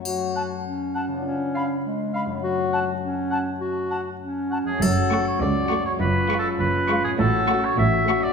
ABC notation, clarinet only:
X:1
M:2/4
L:1/8
Q:1/4=101
K:F#m
V:1 name="Clarinet"
F2 C2 | C2 G,2 | F2 C2 | F2 C2 |
z4 | z4 | z4 |]